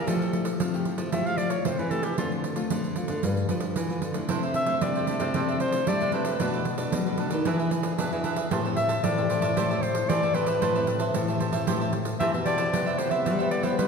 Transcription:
0.07 F3 A3 E4 G4 A4, pandeiro
0.21 A3 E4 G4, pandeiro
0.33 pandeiro
0.45 pandeiro
0.60 C3 F3, pandeiro
0.74 A3 E4 G4, pandeiro
0.85 pandeiro
0.98 F3, pandeiro
1.12 F3 A3 E4 G4 E5, pandeiro
1.26 F5, pandeiro
1.38 D5, pandeiro
1.50 C#5, pandeiro
1.65 C3 A3 E4 G4 C5, pandeiro
1.79 E3 B4, pandeiro
1.91 A3 E4 G4 A4, pandeiro
2.03 G4, pandeiro
2.18 D3 A3 C4 F4, pandeiro
2.32 pandeiro
2.44 pandeiro
2.56 A3 C4 F4, pandeiro
2.70 A2 D3, pandeiro
2.84 pandeiro
2.96 A3 C4 F4, pandeiro
3.08 D3, pandeiro
3.23 G2 G3 D4 F4 B4, pandeiro
3.37 pandeiro
3.49 F3 D4 F4 B4, pandeiro
3.60 pandeiro
3.76 D3 E3, pandeiro
3.90 D4 F4 B4, pandeiro
4.02 D3, pandeiro
4.14 A3 D4 E4, pandeiro
4.29 C3 E4 A4 C5 E5, pandeiro
4.43 A4 C5 E5, pandeiro
4.54 E5, muted cavaquinho stroke, pandeiro
4.66 A3 D4 E4 A4 C5 E5, pandeiro
4.81 C3 G3 D5, pandeiro
4.95 A4 C5 E5, pandeiro
5.07 A3 D4 E4 A4 C5 E5, pandeiro
5.20 C3 A4 C5 E5, pandeiro
5.34 C3 A3 D4 E4 A4 C5 E5, pandeiro
5.48 A4 C5 E5, pandeiro
5.60 C5, muted cavaquinho stroke, pandeiro
5.72 A3 D4 E4, pandeiro
5.87 G3 E4 A4 C5 D5 E5, pandeiro
6.00 C3 A4 C5 E5, pandeiro
6.12 A3 D4 E4 A4 B4 C5 E5, pandeiro
6.25 A4 C5 E5, pandeiro
6.40 B2 A3 D4 F#4 A4 B4 D5, pandeiro
6.54 A4 B4 D5, pandeiro
6.65 muted cavaquinho stroke, pandeiro
6.78 A3 D4 F#4 A4 B4 D5, pandeiro
6.92 B2 F#3, pandeiro
7.06 A3 D4 F#4 A4 B4 D5, pandeiro
7.18 D4 A4 B4 D5, pandeiro
7.30 D#3 A4 B4 D5, pandeiro
7.45 E3 D4 G#4 B4 E5, pandeiro
7.59 G#4 B4 E5, pandeiro
7.71 muted cavaquinho stroke, pandeiro
7.83 D4 G#4 B4, pandeiro
7.98 B2 D4 G#4 B4 E5, pandeiro
8.12 E3 D4 G#4 B4 E5, pandeiro
8.23 D4 G#4 B4 E5, pandeiro
8.36 G#4 B4 E5, pandeiro
8.51 A2 A3 C4 G4 B4 C5 E5 A5, pandeiro
8.64 C4 G4 B4 C5 E5 A5, pandeiro
8.76 E5, muted cavaquinho stroke, pandeiro
8.88 C5 E5 A5, pandeiro
9.04 A2 E3 D5, pandeiro
9.17 C4 G4 B4 C5 E5 A5, pandeiro
9.29 C4 G4 B4 C5 E5 A5, pandeiro
9.42 A2 C5 E5 A5, pandeiro
9.56 A2 A3 C4 G4 B4 C5 E5 A5, pandeiro
9.70 C5 E5 A5, pandeiro
9.82 C5, muted cavaquinho stroke, pandeiro
9.95 pandeiro
10.09 E3 C4 G4 B4 C5 D5 E5 A5, pandeiro
10.22 A2 C5 E5 A5, pandeiro
10.34 C4 G4 B4 C5 E5 A5, pandeiro
10.46 C5 E5 A5, pandeiro
10.61 A2 A3 G4 C5 E5 A5, pandeiro
10.75 C4 G4 B4 C5 E5 A5, pandeiro
10.87 muted cavaquinho stroke, pandeiro
10.99 C5 E5 A5, pandeiro
11.14 A2 E3, pandeiro
11.28 C4 G4 B4 C5 E5 A5, pandeiro
11.39 G4 C5 E5 A5, pandeiro
11.52 A2 C5 E5 A5, pandeiro
11.67 A2 A3 C4 G4 B4 C5 E5 A5, pandeiro
11.81 C5 E5 A5, pandeiro
11.93 muted cavaquinho stroke, pandeiro
12.05 pandeiro
12.20 E3 C4 G4 B4 C5 E5 A5, pandeiro
12.33 B2 C5 E5 A5, pandeiro
12.45 C4 G4 B4 C5 D5 E5 A5, pandeiro
12.57 C5 E5 A5, pandeiro
12.72 C3 B3 E4 G4 B4 C5 E5, pandeiro
12.86 B4 C5 E5, pandeiro
12.98 B3 E4 G4 C5, pandeiro
13.10 B4 C5 E5, pandeiro
13.25 G3 G4 B4 C5 E5, pandeiro
13.39 B3 E4 G4 B4 C5 E5, pandeiro
13.51 D5, muted cavaquinho stroke, pandeiro
13.63 B3 E4 G4 B4 C5 E5, pandeiro
13.77 C3 G3 B3 E4 G4 B4 C5 E5, pandeiro

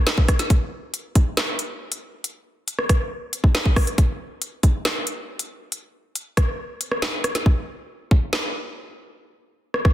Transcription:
0.07 snare, clap, closed hi-hat
0.18 kick
0.28 kick, cross-stick, closed hi-hat
0.39 snare, closed hi-hat
0.50 kick, closed hi-hat
0.94 closed hi-hat
1.15 kick, closed hi-hat
1.37 snare, clap, closed hi-hat
1.59 closed hi-hat
1.92 closed hi-hat
2.24 closed hi-hat
2.68 closed hi-hat
2.79 cross-stick
2.89 kick, cross-stick, closed hi-hat
3.33 closed hi-hat
3.44 kick
3.55 snare, clap, closed hi-hat
3.66 kick
3.76 kick, cross-stick, open hi-hat
3.87 closed hi-hat
3.98 kick, closed hi-hat
4.42 closed hi-hat
4.63 kick, closed hi-hat
4.85 snare, clap, closed hi-hat
5.07 closed hi-hat
5.39 closed hi-hat
5.72 closed hi-hat
6.16 closed hi-hat
6.37 kick, cross-stick, closed hi-hat
6.81 closed hi-hat
6.92 cross-stick
7.02 snare, clap, closed hi-hat
7.24 cross-stick, closed hi-hat
7.35 snare, closed hi-hat
7.46 kick
8.11 kick
8.33 snare, clap
9.74 cross-stick
9.85 kick, cross-stick

